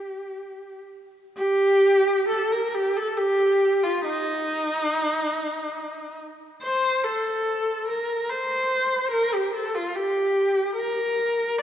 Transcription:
0.00 0.77 G4 medium
1.37 2.24 G4 loud
2.29 2.50 A4 medium
2.52 2.72 A#4 medium
2.74 2.94 G4 medium
2.96 3.16 A4 medium
3.17 3.82 G4 loud
3.83 4.04 F4 medium
4.05 6.15 D#4 loud
6.62 7.01 C5 medium
7.04 7.89 A4 medium
7.88 8.29 A#4 medium
8.29 9.11 C5 medium
9.11 9.32 A#4 loud
9.33 9.54 G4 medium
9.55 9.74 A4 medium
9.75 9.95 F4 medium
9.95 10.76 G4 medium
10.76 11.56 A#4 loud
11.58 11.62 D5 loud

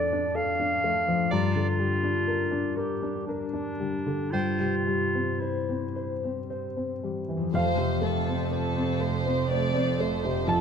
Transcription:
0.00 1.28 F2 soft
0.00 1.35 F2 medium
0.00 0.82 F3 soft
0.00 1.08 F3 soft
0.00 0.58 A3 soft
0.00 0.84 A3 soft
0.00 0.13 D4 soft
0.00 0.34 D4 soft
0.00 0.11 A4 soft
0.00 0.35 A4 soft
0.00 0.37 D5 medium
0.00 2.77 D5 soft
0.12 0.50 D4 soft
0.12 1.36 A4 soft
0.35 2.03 D4 soft
0.35 0.73 A4 soft
0.35 1.32 F5 medium
0.59 1.06 A3 soft
0.59 0.98 D4 soft
0.84 1.36 F3 soft
0.84 1.22 A3 soft
1.08 1.32 F3 soft
1.08 1.36 A3 soft
1.31 4.33 G2 medium
1.31 4.29 G2 soft
1.31 2.78 F4 medium
1.31 1.68 D5 soft
1.31 1.76 A#5 soft
1.56 1.94 D3 soft
1.56 3.80 D3 soft
1.79 2.18 G3 soft
1.79 3.54 G3 soft
2.04 2.42 D4 soft
2.04 3.27 D4 soft
2.28 2.67 A#4 soft
2.28 4.37 A#4 soft
2.51 2.91 D4 soft
2.51 3.02 G4 soft
2.77 3.26 G4 medium
2.77 3.17 A#4 soft
2.77 4.38 D5 soft
3.03 3.43 D4 soft
3.03 5.66 G4 soft
3.27 4.33 D4 medium
3.27 4.38 D4 soft
3.27 3.69 A#4 soft
3.53 4.06 G3 soft
3.53 3.95 D4 soft
3.80 4.38 D3 soft
3.80 4.22 G3 soft
4.06 4.33 D3 soft
4.06 4.86 G3 soft
4.31 7.50 G2 soft
4.31 7.58 G2 soft
4.31 5.41 F4 medium
4.31 4.75 C5 soft
4.31 4.83 G5 soft
4.60 7.58 C3 soft
4.60 4.86 G3 soft
4.87 5.30 G3 soft
4.87 6.76 G3 soft
5.14 6.49 C4 soft
5.14 5.58 C4 soft
5.40 6.49 E4 soft
5.40 5.94 C5 soft
5.40 5.85 C5 soft
5.68 6.12 C4 soft
5.68 6.21 G4 soft
5.95 7.49 C5 soft
5.95 6.39 C5 soft
6.23 6.66 C4 soft
6.23 7.58 G4 soft
6.50 7.45 C4 soft
6.50 6.92 C5 soft
6.77 7.28 G3 soft
6.77 7.19 C4 soft
7.03 7.58 E3 soft
7.03 7.44 G3 soft
7.29 7.54 E3 soft
7.29 7.58 G3 soft
7.37 10.29 F2 soft
7.41 10.61 F3 soft
7.46 10.48 C4 soft
7.51 10.61 F1 soft
7.51 10.61 F2 soft
7.51 10.44 F2 soft
7.51 7.77 A3 soft
7.51 7.77 A4 soft
7.51 10.50 C5 soft
7.51 7.99 C5 medium
7.55 10.44 F5 medium
7.78 8.17 C3 soft
7.78 8.03 C4 soft
7.78 8.03 C5 soft
8.02 8.42 A3 soft
8.02 8.27 A3 soft
8.02 8.51 A4 soft
8.02 8.28 A4 soft
8.27 8.52 C4 soft
8.27 8.68 C4 soft
8.27 8.52 C5 soft
8.52 8.75 A3 soft
8.52 8.75 A4 soft
8.52 9.00 A4 soft
8.52 8.92 C5 soft
8.75 9.01 C4 soft
8.75 9.16 C4 soft
8.75 9.01 C5 soft
9.00 9.26 A3 soft
9.00 9.26 A4 soft
9.00 9.50 C5 medium
9.00 9.41 C5 soft
9.26 9.51 C4 soft
9.26 9.65 C4 soft
9.26 9.50 C5 soft
9.51 9.74 A3 soft
9.51 9.74 A4 soft
9.51 9.90 C5 soft
9.51 9.99 D5 medium
9.75 9.99 C4 soft
9.75 10.14 C4 soft
9.75 9.99 C5 soft
9.99 10.24 A3 soft
9.99 10.39 A3 soft
9.99 10.24 A4 soft
9.99 10.48 C5 soft
10.23 10.48 C3 soft
10.23 10.48 C4 soft
10.23 10.48 C5 soft
10.31 10.61 F2 soft
10.39 10.61 D4 soft
10.44 10.61 F2 soft
10.44 10.61 F4 soft
10.44 10.61 A4 soft
10.44 10.61 A4 medium
10.44 10.61 A5 soft
10.49 10.61 A5 medium

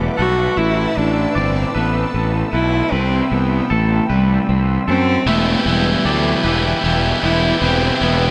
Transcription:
0.00 0.18 E2 medium
0.00 0.95 E3 medium
0.00 0.17 G3 medium
0.00 0.57 B3 medium
0.00 0.17 B4 medium
0.00 2.89 B4 medium
0.00 0.54 E5 medium
0.00 0.55 D6 medium
0.17 0.47 B1 medium
0.17 0.58 G3 medium
0.17 0.59 F#4 loud
0.17 0.57 A4 medium
0.57 0.85 A1 medium
0.57 2.53 A2 medium
0.57 0.99 E4 medium
0.57 1.35 E5 medium
0.57 2.90 A5 medium
0.57 2.90 E6 medium
0.96 1.25 A1 medium
0.96 1.35 E3 medium
0.96 1.38 D4 medium
1.35 1.64 G1 medium
1.35 3.31 E3 medium
1.35 1.76 C4 medium
1.35 1.74 D5 medium
1.75 2.03 A1 medium
1.75 2.52 A3 medium
1.75 2.12 B3 medium
1.75 2.52 B4 medium
2.14 2.42 A1 medium
2.14 2.93 B3 medium
2.53 2.81 B1 medium
2.53 2.93 A3 medium
2.53 2.94 E4 medium
2.53 2.91 B4 medium
2.92 3.20 C2 medium
2.92 4.88 C3 medium
2.92 3.31 C4 medium
2.92 3.70 B4 medium
2.92 5.25 G5 medium
2.92 8.31 E6 medium
3.31 3.60 C2 medium
3.31 3.70 E3 medium
3.31 3.73 B3 medium
3.70 3.99 A1 medium
3.70 6.05 E3 medium
3.70 4.10 A3 medium
3.70 4.09 A4 medium
4.09 4.38 C2 medium
4.09 4.47 G3 medium
4.09 4.87 B4 medium
4.49 4.77 C2 medium
4.49 5.27 C4 medium
4.88 5.16 F#2 medium
4.88 5.28 C4 loud
4.88 5.27 A4 medium
5.26 5.55 E1 medium
5.26 7.23 E2 medium
5.26 5.66 E3 medium
5.26 5.65 A3 medium
5.26 5.66 B3 medium
5.26 5.67 E4 medium
5.26 5.67 G4 medium
5.26 8.31 B4 medium
5.26 6.05 E5 medium
5.26 8.31 G5 medium
5.64 5.94 E1 medium
5.64 7.62 B2 medium
5.64 6.05 E3 medium
5.64 6.05 G3 medium
5.64 6.05 B3 medium
5.64 6.06 E4 medium
5.64 6.06 G4 medium
6.04 6.33 D2 medium
6.04 8.31 E3 medium
6.04 6.44 E3 medium
6.04 6.45 F#3 medium
6.04 6.44 B3 medium
6.04 6.45 E4 medium
6.04 6.44 G4 medium
6.04 6.44 D5 medium
6.43 6.73 E1 medium
6.43 6.83 E3 medium
6.43 7.22 G3 medium
6.43 6.83 B3 medium
6.43 6.84 E4 medium
6.43 6.83 G4 medium
6.43 7.23 B4 medium
6.83 7.12 E1 medium
6.83 7.22 E3 medium
6.83 7.23 B3 medium
6.83 7.23 E4 medium
6.83 7.23 G4 medium
7.23 7.51 E1 medium
7.23 7.61 E3 medium
7.23 8.31 G3 medium
7.23 7.61 B3 medium
7.23 7.62 E4 medium
7.23 7.60 E4 loud
7.23 7.62 G4 medium
7.23 7.62 B4 medium
7.62 7.90 E1 medium
7.62 8.31 E2 medium
7.62 8.00 E3 medium
7.62 8.01 B3 loud
7.62 8.04 C4 medium
7.62 8.01 E4 medium
7.62 8.01 G4 loud
7.62 8.31 B4 medium
8.01 8.29 E1 medium
8.01 8.31 B2 medium
8.01 8.31 E3 medium
8.01 8.31 B3 medium
8.01 8.31 E4 medium
8.01 8.31 G4 medium

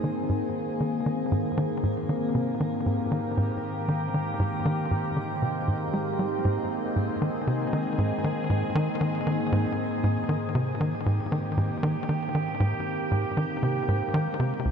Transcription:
0.00 14.61 G#2 medium
0.00 14.61 D#3 medium
0.00 0.12 D#3 medium
0.00 14.61 A#3 medium
0.00 14.61 C4 medium
0.00 2.33 G#4 medium
0.29 0.43 G#2 medium
0.80 1.01 D#3 medium
1.06 1.20 D#3 medium
1.32 1.46 G#2 medium
1.58 1.71 D#3 loud
1.83 1.97 G#2 medium
2.09 2.17 D#3 medium
2.34 2.55 C3 medium
2.34 6.43 G4 medium
2.60 2.74 D#3 medium
2.86 3.00 G#2 medium
3.12 3.20 D#3 medium
3.37 3.51 G#2 medium
3.88 4.09 D#3 medium
4.14 4.28 D#3 medium
4.40 4.53 G#2 loud
4.65 4.79 D#3 loud
4.91 5.05 G#2 medium
5.17 5.25 D#3 medium
5.42 5.63 C3 medium
5.68 5.76 G#2 medium
5.94 6.14 G#3 medium
6.19 6.27 G3 medium
6.45 6.59 G#2 medium
6.45 10.54 G#4 medium
6.96 7.10 G#2 medium
7.22 7.30 D#3 medium
7.47 7.68 C3 medium
7.73 7.87 D#3 medium
7.98 8.12 G#2 medium
8.24 8.33 D#3 medium
8.50 8.64 G#2 medium
8.75 8.89 D#3 loud
9.01 9.22 D#3 medium
9.27 9.41 D#3 medium
9.52 9.66 G#2 loud
10.04 10.18 G#2 medium
10.29 10.37 D#3 medium
10.55 10.76 C3 medium
10.55 14.64 G4 loud
10.81 10.94 D#3 medium
11.06 11.20 G#2 medium
11.32 11.40 D#3 medium
11.57 11.71 G#2 medium
11.83 11.97 D#3 loud
12.09 12.30 D#3 medium
12.35 12.48 D#3 medium
12.60 12.74 G#2 loud
13.11 13.25 G#2 medium
13.37 13.45 D#3 medium
13.63 13.83 C3 medium
13.88 14.02 G#2 medium
14.14 14.28 D#3 loud
14.40 14.53 C3 medium
14.65 14.71 C#2 medium
14.65 14.71 C#3 medium
14.65 14.71 G#3 medium
14.65 14.71 F4 medium
14.65 14.71 G#4 medium

